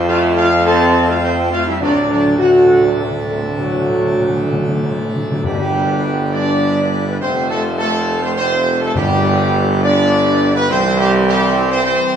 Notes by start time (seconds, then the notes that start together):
Already playing: F2 A3 C4 C5
0.08 A3 F4 F5
0.37 A3 F4 F5
0.66 C4 A4 A5
1.08 A3 F4 F5
1.23 F3 C4 C5
1.51 A3 F4 F5
1.66 G3 E4 E5
1.80 D2 A2 D3 F#3 A3 D4 A4 D5
1.96 D3
2.04 D3
2.09 D3 F#3 D4 D5
2.19 D3
2.26 D3
2.38 D3 A3 F#4 F#5
2.49 D3
2.56 D3
2.64 D3
2.72 D3
2.80 D3
2.84 D3 F#3 D4 D5
2.95 D3
2.99 D3 A3 A4
3.11 D3
3.19 D3
3.27 C3 D3 A3 A4
3.34 D3
3.42 D3
3.50 D3
3.58 A2 D3 F#3 F#4
3.66 D3
3.74 D3
3.82 D3
3.90 D3
3.97 D3
4.05 D3
4.13 D3
4.21 D3
4.29 D3
4.37 D3
4.45 D3
4.52 D3
4.60 D3
4.67 D3
4.76 D3
4.83 D3
4.91 D3
5.00 D3
5.08 D3
5.16 D3
5.24 D3
5.32 D3
5.43 G1 G2 D3 G3 B3 D4 G4 B4
6.33 D4 D5
7.07 B3 B4
7.21 F1 C3 F3 A3 C4 F4 C5
7.49 A3 A4
7.78 A3 A4
8.22 C4 C5
8.37 C4 C5
8.81 A3 A4
8.94 G1 G2 D3 G3 B3 G4 B4
9.83 D4 D5
10.55 B3 B4
10.68 C2 E3 C4 C5
10.99 G3 G4
11.27 G3 G4
11.69 C4 C5
11.83 C4 C5